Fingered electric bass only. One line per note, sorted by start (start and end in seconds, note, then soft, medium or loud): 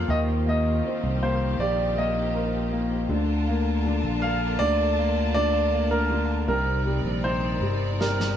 0.08 0.80 D#2 medium
1.03 1.55 C2 medium
1.59 3.06 A#1 medium
3.09 3.99 D2 medium
4.03 4.56 A#1 medium
4.60 6.44 D2 medium
6.48 7.01 C2 medium
7.04 7.57 A#1 medium
7.61 8.33 G1 medium